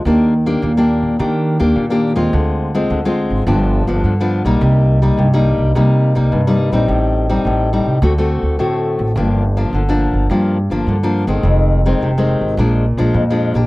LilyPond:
<<
  \new Staff \with { instrumentName = "Nylon-string guitar" } { \time 4/4 \key ees \major \tempo 4 = 106 << { <bes d' g'>8 r16 <bes d' g'>8 <bes d' g'>8. <bes d' g'>8. <bes d' g'>8 <bes d' g'>8 <aes c' f'>16~ | <aes c' f'>8. <aes c' f'>8 <aes c' f'>8. <f b d'>8. <f b d'>8 <f b d'>8 <g bes ees'>16~ | <g bes ees'>8. <g bes ees'>8 <g bes ees'>8. <g bes ees'>8. <g bes ees'>8 <g bes ees'>8 <g c' ees'>16~ | <g c' ees'>8. <g c' ees'>8. <g c' ees'>8 <a c' fis'>16 <a c' fis'>8. <a c' fis'>4 |
<f bes d'>8 r16 <f bes d'>8 <f bes d'>8. <f bes d'>8 r16 <f bes d'>8 <f bes d'>8 <ees aes c'>16~ | <ees aes c'>8. <ees aes c'>8 <ees aes c'>8. <f aes d'>8 r16 <f aes d'>8 <f aes d'>8 <bes d' g'>16 | } \\ { ees4 bes,4 ees4 bes,4 | d4 d4 g,4 d4 | c4 g,4 c4 g,4 | a,4 a,4 d4 a,4 |
g,4 d4 g,4 d4 | f,4 c4 bes,4 f,4 | } >> }
  \new Staff \with { instrumentName = "Upright bass" } { \clef bass \time 4/4 \key ees \major ees,4 ees,8. ees,16 ees8. ees,16 ees8. ees,16 | d,4 d,8. aes,,16 g,,8. g,,16 g,8. b,,16 | c,4 c,8. c,16 c8. c,16 c8. bes,,16 | a,,4 a,,8. c,16 d,8. d,16 d8. a,,16 |
g,,4 g,,8. g,,16 g,8. g,,16 g,8. g,,16 | f,,4 f,,8. aes,,16 bes,,8. bes,,16 bes,8. bes,,16 | }
>>